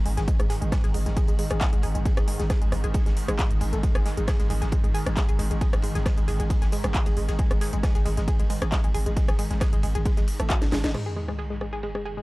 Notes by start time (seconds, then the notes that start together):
Already playing: G#2 D#3
0.05 G#1 G#3, open hi-hat, ride
0.17 G#1 G#4, snare, closed hi-hat, ride
0.28 G#3, kick, closed hi-hat, ride
0.39 G#1 G#3, cross-stick, closed hi-hat, ride
0.50 G#4, snare, open hi-hat, ride
0.61 G#1 G#3, closed hi-hat
0.72 G#3, kick, cross-stick, snare, closed hi-hat, ride
0.84 G#1 G#4, snare, closed hi-hat
0.94 G#1 G#3, open hi-hat, ride
1.06 G#1 G#3, snare, closed hi-hat
1.16 G#4, kick, closed hi-hat, ride
1.27 G#1 G#3, closed hi-hat, ride
1.38 G#3, open hi-hat, ride
1.50 G#1 G#4, cross-stick, closed hi-hat, ride
1.61 G#3, kick, snare, clap, closed hi-hat, ride
1.73 G#1 G#3, closed hi-hat, ride
1.83 G#1 G#4, open hi-hat, ride
1.95 G#1 G#3, closed hi-hat
2.05 G#3, kick, closed hi-hat, ride
2.17 G#1 G#4, cross-stick, closed hi-hat, ride
2.28 G#3, open hi-hat, ride
2.39 G#1 G#3, snare, closed hi-hat
2.50 G#4, kick, cross-stick, snare, closed hi-hat, ride
2.62 G#1 G#3, closed hi-hat
2.72 G#1 G#3, cross-stick, open hi-hat, ride
2.84 G#1 G#4, closed hi-hat
2.94 G#3, kick, closed hi-hat, ride
3.06 G#1 G#3, snare, closed hi-hat
3.17 open hi-hat, ride
3.28 G#1 G#3, cross-stick, closed hi-hat
3.39 G#3, kick, snare, clap, closed hi-hat, ride
3.51 G#1, closed hi-hat
3.61 G#1 G#3, open hi-hat, ride
3.73 G#1 A3, closed hi-hat
3.83 G#3, kick, closed hi-hat, ride
3.95 G#1 G#4, cross-stick, closed hi-hat, ride
4.06 G#3, snare, open hi-hat, ride
4.17 G#1 G#3, closed hi-hat
4.27 G#4, kick, cross-stick, snare, closed hi-hat, ride
4.39 G#1 G#3, snare, closed hi-hat
4.50 G#1 G#3, open hi-hat, ride
4.62 G#1 G#4, snare, closed hi-hat
4.72 G#3, kick, closed hi-hat, ride
4.84 G#1 G#3, closed hi-hat, ride
4.94 G#4, open hi-hat, ride
5.06 G#1 G#3, cross-stick, closed hi-hat, ride
5.16 G#3, kick, snare, clap, closed hi-hat, ride
5.28 G#1 G#4, closed hi-hat, ride
5.39 G#1 G#3, open hi-hat, ride
5.51 G#1 G#3, closed hi-hat
5.61 G#4, kick, closed hi-hat, ride
5.73 G#1 G#3, cross-stick, closed hi-hat, ride
5.82 G#3, open hi-hat, ride
5.95 G#1 G#4, snare, closed hi-hat
6.06 G#3, kick, cross-stick, snare, closed hi-hat, ride
6.17 G#1 G#3, closed hi-hat
6.28 G#1 G#4, open hi-hat, ride
6.39 G#1 G#3, closed hi-hat
6.50 G#3, kick, closed hi-hat, ride
6.62 G#1 G#4, snare, closed hi-hat
6.72 G#3, open hi-hat, ride
6.84 G#1 G#3, cross-stick, closed hi-hat, ride
6.94 G#4, kick, snare, clap, closed hi-hat, ride
7.06 G#1 G#3, closed hi-hat, ride
7.17 G#1 G#3, open hi-hat, ride
7.28 G#1 G#4, snare, closed hi-hat, ride
7.39 G#3, kick, closed hi-hat, ride
7.51 G#1 G#3, cross-stick, closed hi-hat, ride
7.61 G#4, snare, open hi-hat, ride
7.73 G#1 G#3, closed hi-hat
7.83 G#3, kick, cross-stick, snare, closed hi-hat, ride
7.94 G#1 G#4, snare, closed hi-hat
8.05 G#1 G#3, open hi-hat, ride
8.17 G#1 G#3, snare, closed hi-hat
8.28 G#4, kick, closed hi-hat, ride
8.39 G#1 G#3, closed hi-hat, ride
8.50 G#3, open hi-hat, ride
8.62 G#1 G#4, cross-stick, closed hi-hat, ride
8.72 G#3, kick, snare, clap, closed hi-hat, ride
8.84 G#1 G#3, closed hi-hat, ride
8.94 G#1 G#4, open hi-hat, ride
9.06 G#1 G#3, closed hi-hat
9.16 G#3, kick, closed hi-hat, ride
9.28 G#1 G#4, cross-stick, closed hi-hat, ride
9.39 G#3, open hi-hat, ride
9.51 G#1 G#3, snare, closed hi-hat
9.60 G#4, kick, cross-stick, snare, closed hi-hat, ride
9.73 G#1 G#3, closed hi-hat
9.83 G#1 G#3, open hi-hat, ride
9.95 G#1 G#4, closed hi-hat
10.05 G#3, kick, closed hi-hat, ride
10.16 G#1 G#3, snare, closed hi-hat
10.27 open hi-hat, ride
10.39 G#1 A3, cross-stick, closed hi-hat
10.50 F#3, kick, clap, closed hi-hat
10.62 G#1, snare, closed hi-hat
10.71 G#1 G#3, snare, open hi-hat, ride
10.77 snare, ride
10.84 G#1 D#4, snare, closed hi-hat, ride
10.89 snare, ride
10.94 G#3, cross-stick, crash, ride, sub drop
11.06 G#4, ride
11.16 G#3, snare, ride
11.28 G#3, cross-stick
11.39 G#4, ride
11.50 G#3, snare
11.61 G#3, cross-stick, ride
11.72 G#4, snare
11.83 G#3, ride
11.95 G#3, cross-stick, ride
12.05 G#4, ride
12.17 G#3, ride